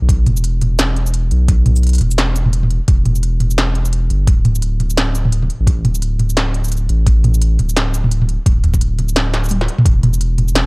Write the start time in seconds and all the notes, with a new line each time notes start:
0.02 B1
0.09 kick, closed hi-hat
0.26 E1, closed hi-hat, mid tom
0.37 shaker
0.44 closed hi-hat
0.61 closed hi-hat, mid tom
0.79 snare, closed hi-hat, shaker
0.96 closed hi-hat
1.06 shaker
1.14 closed hi-hat
1.31 B1, closed hi-hat
1.48 kick, closed hi-hat
1.66 closed hi-hat, mid tom
1.76 shaker
1.83 closed hi-hat
1.87 closed hi-hat
1.89 closed hi-hat
1.93 closed hi-hat
1.95 closed hi-hat
1.98 closed hi-hat
2.01 E1, closed hi-hat, mid tom
2.11 shaker
2.18 snare, closed hi-hat
2.36 closed hi-hat, shaker
2.46 mid tom
2.53 closed hi-hat
2.63 mid tom
2.70 closed hi-hat
2.88 E1, kick, closed hi-hat
3.05 closed hi-hat, mid tom
3.15 shaker
3.23 closed hi-hat
3.40 closed hi-hat, mid tom
3.50 shaker
3.58 snare, closed hi-hat
3.75 closed hi-hat
3.85 shaker
3.93 closed hi-hat
4.10 G1, closed hi-hat
4.27 D1, kick, closed hi-hat
4.45 closed hi-hat, mid tom
4.55 shaker
4.62 closed hi-hat
4.80 closed hi-hat, mid tom
4.90 shaker
4.97 snare, closed hi-hat
5.15 closed hi-hat, shaker
5.25 mid tom
5.32 closed hi-hat
5.42 mid tom
5.50 closed hi-hat
5.60 A1
5.67 kick, closed hi-hat
5.84 D1, closed hi-hat, mid tom
5.95 shaker
6.02 closed hi-hat
6.19 closed hi-hat, mid tom
6.30 shaker
6.37 snare, closed hi-hat
6.54 closed hi-hat
6.64 shaker
6.68 closed hi-hat, shaker
6.72 shaker
6.77 shaker
6.89 A1, closed hi-hat
7.07 kick, closed hi-hat
7.24 closed hi-hat, mid tom
7.34 shaker
7.42 closed hi-hat
7.59 D1, closed hi-hat, mid tom
7.69 shaker
7.77 snare, closed hi-hat
7.94 closed hi-hat, shaker
8.04 mid tom
8.11 closed hi-hat
8.22 mid tom
8.29 closed hi-hat
8.46 D1, kick, closed hi-hat
8.64 closed hi-hat, mid tom
8.74 kick, shaker
8.81 closed hi-hat
8.99 closed hi-hat, mid tom
9.09 shaker
9.16 snare, closed hi-hat
9.34 snare, closed hi-hat
9.44 shaker
9.45 shaker
9.49 closed hi-hat, high tom, shaker
9.61 snare
9.68 closed hi-hat
9.78 mid tom
9.86 E1, kick, closed hi-hat
10.03 closed hi-hat, mid tom
10.13 shaker
10.21 closed hi-hat
10.38 closed hi-hat, mid tom
10.48 shaker
10.55 snare, closed hi-hat